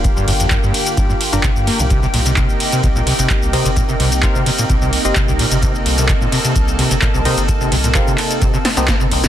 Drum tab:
RD |--x---x---x---x-|--x---x---x---x-|--x---x---x---x-|--x---x---x---x-|
HH |x-oxx-oxx-oxx-ox|x-oxx-oxx-oxx-ox|x-oxx-oxx-oxx-ox|x-oxx-oxx-oxx-ox|
SH |xx-xxx-xxx-xxx-x|xx-xxx-xxx-xxx-x|xx-xxx-xxx-xxx-x|xx-xxx-xxx-xxx-x|
CP |----x-------x---|----x-------x---|----x-------x---|----x-------x---|
SD |----------------|----------------|----------------|----------------|
BD |o---o---o---o---|o---o---o---o---|o---o---o---o---|o---o---o---o---|

RD |--x---x---x---x-|
HH |x-oxx-oxx-oxx-ox|
SH |xx-xxx-xxx-xxx-x|
CP |----x-x-----x---|
SD |----------ooo--o|
BD |o---o---o---o---|